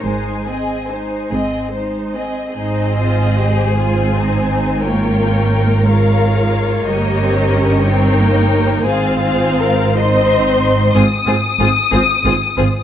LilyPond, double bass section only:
\new Staff \with { instrumentName = "Double bass section" } { \clef bass \time 6/8 \key aes \major \tempo 4. = 59 aes,,4. aes,,4. | aes,,2.~ | aes,,2. | g,,2. |
aes,,2. | \key f \minor aes,,8 aes,,8 aes,,8 aes,,8 aes,,8 aes,,8 | }